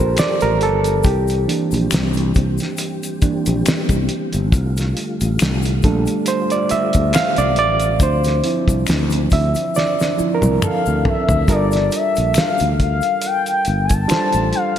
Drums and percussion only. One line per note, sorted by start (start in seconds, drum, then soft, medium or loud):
0.17 finger snap medium
0.17 snare loud
0.17 closed hi-hat medium
0.17 shaker medium
0.41 closed hi-hat soft
0.41 shaker soft
0.61 closed hi-hat soft
0.84 closed hi-hat soft
0.84 shaker soft
1.03 kick loud
1.03 closed hi-hat medium
1.03 shaker medium
1.28 closed hi-hat soft
1.28 shaker soft
1.49 closed hi-hat medium
1.71 closed hi-hat soft
1.71 shaker medium
1.91 finger snap medium
1.91 snare loud
1.91 closed hi-hat medium
1.91 shaker medium
2.14 closed hi-hat soft
2.14 shaker soft
2.34 kick medium
2.34 closed hi-hat medium
2.34 shaker soft
2.58 closed hi-hat soft
2.58 shaker soft
2.62 snare soft
2.77 closed hi-hat medium
2.77 shaker medium
3.03 closed hi-hat soft
3.03 shaker soft
3.22 kick loud
3.22 closed hi-hat medium
3.22 shaker soft
3.46 closed hi-hat medium
3.46 shaker medium
3.66 finger snap medium
3.66 snare loud
3.66 closed hi-hat medium
3.66 shaker medium
3.89 kick medium
3.89 closed hi-hat soft
3.89 shaker soft
4.09 closed hi-hat medium
4.33 closed hi-hat soft
4.33 shaker soft
4.52 kick loud
4.52 closed hi-hat medium
4.52 shaker medium
4.77 snare soft
4.77 closed hi-hat soft
4.77 shaker soft
4.97 closed hi-hat medium
5.21 closed hi-hat soft
5.21 shaker soft
5.39 finger snap medium
5.39 snare loud
5.39 closed hi-hat medium
5.39 shaker medium
5.62 closed hi-hat soft
5.62 shaker soft
5.82 kick loud
5.82 closed hi-hat medium
5.82 shaker soft
6.06 closed hi-hat soft
6.06 shaker soft
6.26 closed hi-hat medium
6.26 shaker medium
6.50 closed hi-hat soft
6.50 shaker soft
6.69 closed hi-hat medium
6.69 shaker soft
6.93 kick medium
6.93 closed hi-hat medium
6.93 shaker medium
7.13 finger snap medium
7.13 snare loud
7.13 closed hi-hat medium
7.13 shaker medium
7.36 closed hi-hat soft
7.36 shaker soft
7.56 closed hi-hat medium
7.80 closed hi-hat medium
7.80 shaker soft
8.00 kick loud
8.00 closed hi-hat medium
8.00 shaker medium
8.24 snare soft
8.24 closed hi-hat soft
8.24 shaker soft
8.44 closed hi-hat medium
8.68 kick medium
8.68 closed hi-hat soft
8.68 shaker medium
8.87 finger snap medium
8.87 snare loud
8.87 closed hi-hat medium
8.87 shaker medium
9.10 closed hi-hat medium
9.10 shaker soft
9.30 kick medium
9.30 closed hi-hat medium
9.30 shaker soft
9.55 closed hi-hat soft
9.55 shaker soft
9.75 snare medium
9.75 shaker medium
9.99 snare medium
9.99 shaker soft
10.19 shaker soft
10.42 high tom medium
10.42 shaker medium
10.62 finger snap medium
10.62 mid tom medium
10.62 shaker medium
10.86 shaker soft
11.05 floor tom medium
11.29 floor tom loud
11.29 shaker soft
11.48 kick loud
11.48 closed hi-hat medium
11.48 shaker medium
11.71 snare soft
11.71 closed hi-hat soft
11.71 shaker soft
11.91 closed hi-hat medium
11.91 shaker soft
12.16 closed hi-hat soft
12.16 shaker medium
12.34 finger snap medium
12.34 snare loud
12.34 closed hi-hat medium
12.34 shaker medium
12.58 closed hi-hat soft
12.58 shaker soft
12.80 kick medium
12.80 closed hi-hat medium
13.01 closed hi-hat soft
13.01 shaker soft
13.22 closed hi-hat medium
13.22 shaker medium
13.46 closed hi-hat soft
13.46 shaker soft
13.65 closed hi-hat medium
13.65 shaker soft
13.89 kick medium
13.89 closed hi-hat medium
13.89 shaker medium
14.09 finger snap medium
14.09 snare loud
14.09 closed hi-hat medium
14.09 shaker medium
14.32 closed hi-hat soft
14.32 shaker soft
14.53 closed hi-hat medium